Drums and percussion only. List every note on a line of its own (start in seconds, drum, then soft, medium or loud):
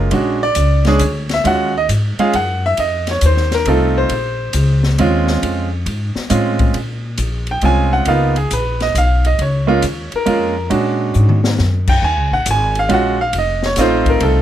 0.11 kick soft
0.11 ride medium
0.55 kick soft
0.55 hi-hat pedal medium
0.55 ride medium
0.85 snare soft
0.85 ride soft
0.99 kick soft
0.99 hi-hat pedal medium
0.99 ride medium
1.29 snare medium
1.29 ride medium
1.45 kick soft
1.45 ride medium
1.89 kick soft
1.89 hi-hat pedal medium
1.89 ride medium
2.19 ride soft
2.33 kick soft
2.33 ride medium
2.77 kick soft
2.77 ride medium
3.07 snare soft
3.07 ride medium
3.21 kick soft
3.21 hi-hat pedal medium
3.21 ride medium
3.37 snare soft
3.51 snare soft
3.51 ride medium
3.65 kick soft
3.65 ride medium
4.09 kick soft
4.09 ride medium
4.53 kick soft
4.53 hi-hat pedal medium
4.53 ride medium
4.83 snare soft
4.98 kick soft
4.98 ride medium
5.27 snare medium
5.43 kick soft
5.43 ride medium
5.86 kick soft
5.86 ride medium
6.16 snare soft
6.30 kick soft
6.30 hi-hat pedal medium
6.30 ride medium
6.59 kick medium
6.59 ride medium
6.74 ride medium
7.18 kick soft
7.18 hi-hat pedal medium
7.18 ride medium
7.47 ride soft
7.61 kick soft
7.61 ride medium
8.05 kick soft
8.05 ride medium
8.36 ride medium
8.51 kick soft
8.51 hi-hat pedal medium
8.51 ride medium
8.80 snare soft
8.80 ride soft
8.95 kick soft
8.95 hi-hat pedal medium
8.95 ride medium
9.25 ride medium
9.39 kick soft
9.39 ride medium
9.82 kick soft
9.82 hi-hat pedal medium
9.82 ride medium
10.12 ride soft
10.26 kick soft
10.26 ride medium
10.71 kick soft
10.71 ride medium
11.14 hi-hat pedal medium
11.29 mid tom medium
11.44 snare medium
11.58 snare medium
11.87 kick medium
11.87 crash medium
12.02 kick soft
12.46 kick soft
12.46 hi-hat pedal medium
12.46 ride medium
12.75 ride soft
12.89 kick soft
12.89 ride medium
13.33 kick soft
13.33 ride medium
13.63 snare medium
13.76 kick soft
13.76 snare soft
13.76 hi-hat pedal medium
13.76 ride medium
14.06 kick medium
14.06 ride medium
14.20 kick soft
14.20 ride medium